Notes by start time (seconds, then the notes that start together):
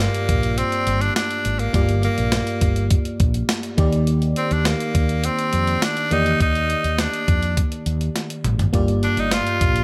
Already playing: G2 A#3 F4 G4 D5
0.00 A#3, closed hi-hat
0.15 closed hi-hat
0.29 A#1, kick, closed hi-hat
0.43 closed hi-hat
0.58 C4, closed hi-hat
0.72 closed hi-hat
0.87 G1, closed hi-hat
1.01 D4, closed hi-hat
1.16 D4, snare, closed hi-hat
1.31 closed hi-hat
1.45 G#1, closed hi-hat
1.59 A#3, closed hi-hat
1.73 G1 G2 A#3 F4 G4 D5, kick, closed hi-hat
1.89 closed hi-hat
2.03 A#3, closed hi-hat
2.18 A#1, closed hi-hat
2.32 snare, closed hi-hat
2.47 closed hi-hat
2.61 G1, kick, closed hi-hat
2.76 closed hi-hat
2.91 kick, closed hi-hat
3.05 closed hi-hat
3.20 A#1, kick, closed hi-hat
3.34 closed hi-hat
3.49 snare, closed hi-hat
3.63 closed hi-hat
3.77 D#2 D#3 A#3 D#4 G4 D5, kick, closed hi-hat
3.93 closed hi-hat
4.07 closed hi-hat
4.22 closed hi-hat
4.36 C4, closed hi-hat
4.51 D#2 D4, closed hi-hat
4.65 A#3, snare, closed hi-hat
4.80 closed hi-hat
4.95 D#2, kick, closed hi-hat
5.09 closed hi-hat
5.24 C4, closed hi-hat
5.39 closed hi-hat
5.53 F2, closed hi-hat
5.67 closed hi-hat
5.82 D4, snare, closed hi-hat
5.97 closed hi-hat
6.11 E2 D#3 A#3 D#4 G4 D5, closed hi-hat
6.26 closed hi-hat
6.41 D#2 D#4, kick, closed hi-hat
6.55 closed hi-hat
6.70 closed hi-hat
6.84 D#2, closed hi-hat
6.99 D4, snare, closed hi-hat
7.14 closed hi-hat
7.28 F2, kick, closed hi-hat
7.43 closed hi-hat
7.57 kick, closed hi-hat
7.72 closed hi-hat
7.86 D#2, closed hi-hat
8.01 closed hi-hat
8.16 snare, closed hi-hat
8.30 closed hi-hat
8.44 G#1, closed hi-hat, mid tom
8.59 closed hi-hat, floor tom
8.73 G1 G2 A#3 F4 G4 D5, kick, closed hi-hat
8.88 closed hi-hat
9.03 D4, closed hi-hat
9.17 G1 D#4, closed hi-hat
9.31 F4, snare, closed hi-hat
9.47 closed hi-hat
9.61 A#1, kick, closed hi-hat
9.76 closed hi-hat